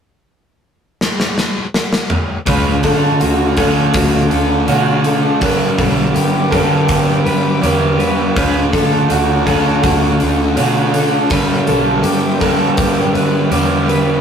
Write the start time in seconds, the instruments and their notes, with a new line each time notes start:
1.01 snare
1.20 snare
1.38 snare
1.74 snare
1.93 snare
2.10 mid tom
2.46 fingered electric bass D2, distorted electric guitar D3 A3 D4, overdriven electric guitar D3 D4 F#4, string machine A4 F#5 D6, twelve-string acoustic guitar B4, kick, open hi-hat
2.50 overdriven electric guitar A4
2.83 fingered electric bass G2, distorted electric guitar A3 D4, twelve-string acoustic guitar A4, kick, open hi-hat
3.20 fingered electric bass D2, distorted electric guitar D3 A3 D4, twelve-string acoustic guitar F#4, open hi-hat
3.57 overdriven electric guitar D4 F#4 A4, twelve-string acoustic guitar A4, kick, open hi-hat
3.61 overdriven electric guitar D3
3.94 fingered electric bass D2, twelve-string acoustic guitar F#4, kick, open hi-hat
4.30 fingered electric bass D2, distorted electric guitar A3 D4, twelve-string acoustic guitar A4, open hi-hat
4.67 fingered electric bass B2, distorted electric guitar D3 A3 D4, overdriven electric guitar D3 D4 F#4, twelve-string acoustic guitar F#4, open hi-hat
4.72 overdriven electric guitar A4
5.04 distorted electric guitar A3 D4, twelve-string acoustic guitar A4, open hi-hat
5.39 fingered electric bass G1, distorted electric guitar G2 D3, overdriven electric guitar G3 B3 D4, string machine B4 G5, twelve-string acoustic guitar B4, kick, open hi-hat
5.44 distorted electric guitar G3, overdriven electric guitar B4
5.77 fingered electric bass B1, distorted electric guitar D3 G3, twelve-string acoustic guitar A4, kick, open hi-hat
6.14 fingered electric bass G1, distorted electric guitar G2 D3 G3, twelve-string acoustic guitar G4, open hi-hat
6.51 overdriven electric guitar G3 B3 D4 B4, twelve-string acoustic guitar A4, kick, open hi-hat
6.88 fingered electric bass G1, twelve-string acoustic guitar G4, kick, open hi-hat
7.25 fingered electric bass G1, distorted electric guitar D3 G3, twelve-string acoustic guitar B4, open hi-hat
7.61 fingered electric bass E2, distorted electric guitar G2 D3, overdriven electric guitar G3 B3 D4 B4, twelve-string acoustic guitar G4, open hi-hat
7.66 distorted electric guitar G3
7.98 distorted electric guitar D3 G3, twelve-string acoustic guitar B4, open hi-hat
8.35 fingered electric bass D2, distorted electric guitar D3 A3 D4, overdriven electric guitar D3 D4 F#4, string machine A4 F#5, twelve-string acoustic guitar B4, kick, open hi-hat
8.39 overdriven electric guitar A4
8.72 fingered electric bass G2, distorted electric guitar A3 D4, twelve-string acoustic guitar A4, kick, open hi-hat
9.09 fingered electric bass D2, distorted electric guitar D3 A3 D4, twelve-string acoustic guitar F#4, open hi-hat
9.46 overdriven electric guitar D3 D4 F#4 A4, twelve-string acoustic guitar A4, kick, open hi-hat
9.83 fingered electric bass D2, twelve-string acoustic guitar F#4, kick, open hi-hat
10.20 fingered electric bass D2, distorted electric guitar A3 D4, twelve-string acoustic guitar A4, open hi-hat
10.56 fingered electric bass B2, distorted electric guitar D3 A3 D4, overdriven electric guitar D3 D4 F#4 A4, twelve-string acoustic guitar F#4, open hi-hat
10.93 distorted electric guitar A3 D4, twelve-string acoustic guitar A4, open hi-hat
11.30 fingered electric bass G1, distorted electric guitar G2 D3 G3, overdriven electric guitar G3 B3 D4 B4, twelve-string acoustic guitar B4, string machine B4 G5 D6, kick, open hi-hat
11.67 fingered electric bass B1, distorted electric guitar D3 G3, twelve-string acoustic guitar A4, open hi-hat
12.03 fingered electric bass G1, distorted electric guitar G2 D3, twelve-string acoustic guitar G4, open hi-hat
12.07 distorted electric guitar G3
12.40 overdriven electric guitar B3 D4 B4, twelve-string acoustic guitar A4, kick, open hi-hat
12.45 overdriven electric guitar G3
12.77 fingered electric bass G1, twelve-string acoustic guitar G4, kick, open hi-hat
13.14 fingered electric bass G1, distorted electric guitar D3 G3, twelve-string acoustic guitar B4, open hi-hat
13.50 fingered electric bass E2, distorted electric guitar G2 D3, overdriven electric guitar G3 B3 D4 B4, twelve-string acoustic guitar G4, open hi-hat
13.54 distorted electric guitar G3
13.87 distorted electric guitar D3 G3, twelve-string acoustic guitar B4, open hi-hat